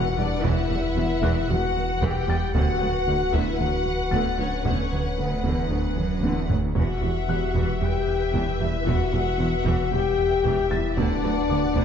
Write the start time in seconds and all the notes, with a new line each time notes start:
Already playing: E1 E3 F#4 B4 F#5 E6, impact
0.18 E1 E2 G3 D4 D5
0.43 E1 E2 E3 E4 E5, taiko
0.70 E1 E2 G3 E4
0.97 E1 E2 E3 F#3 B3
1.23 E1 E2 E3 F#6, taiko
1.49 E1 E2 G3 F#4 F#5, taiko mid
1.76 E2, taiko mid
2.01 E1 E2 E3 G4 G5, taiko
2.28 E1 E2 G3 A6
2.54 D1 D2 D3 B3 F#4 B4 F#5, taiko
2.81 D2 F#3 B4
3.07 D2 D3 F#4
3.33 D2 D3 B3 E4 E5, taiko
3.60 D2 F#3 D4 F#4 F#5, taiko mid
3.86 D2, taiko mid
4.11 D2 D3 B3 A6, taiko
4.39 D2 F#3 C#4 D4 C#5
4.65 D2 D3 B3 C#4 C#5, taiko
4.92 D2 F#3 B4
5.18 D2 D3 B3 F#4 B4
5.44 D2 E2 D3 B3, taiko
5.70 D2 F#3 D4
5.97 D2 F#2, taiko mid
6.23 D2 E2 D3 B3, taiko high
6.50 D2 F#3 D4, taiko low
6.75 E1 E2 E3 F#4 B4 E5 F#5, taiko
7.01 E1 E2 G3 E4
7.28 E1 E2 E3 F#3 B3 G4 F#6
7.54 E1 E2 E3, taiko
7.81 E1 E2 G3 G4 G5
8.08 E2
8.33 E1 E2 E3, taiko
8.60 E1 E2 G3 E4 E5
8.86 E1 E2 E3 F#4 F#5, taiko
9.13 E1 E2 G3 E4
9.39 E1 E2 E3 F#3 B3
9.65 E1 E2 E3, taiko
9.92 E1 E2 G3 G4 G5
10.18 E2
10.44 E1 E2 E3, taiko
10.70 E1 E2 G3 E4 E5 A6
10.97 D1 D2 D3 B3 D4 B4 D5 F#5, taiko
11.23 D2 F#3 B4
11.50 D2 D3 F#4 D6
11.76 D2 D3 B3, taiko